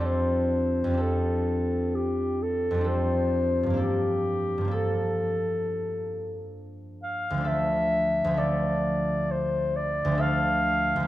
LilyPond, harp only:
\new Staff \with { instrumentName = "Harp" } { \time 4/4 \key f \major \tempo 4 = 65 <f, g c' d' a'>4 <f, g c' d' a'>2 <f, g c' d' a'>4 | <g, f bes d' a'>4 <g, f bes d' a'>2. | <d, f a d' a'>4 <d, f a d' a'>2 <d, f a d' a'>4 | }